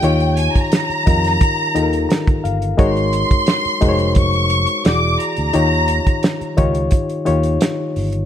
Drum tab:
HH |xxxxxxxxx-xxxxxx|xxxxxxxxxxxxx-xx|x-xxxxxxxxxxx-ox|
SD |----o--o----o---|----o-------o---|----o-------o---|
BD |---o--o-o----o--|o--o--o-o-------|---o--o-o-------|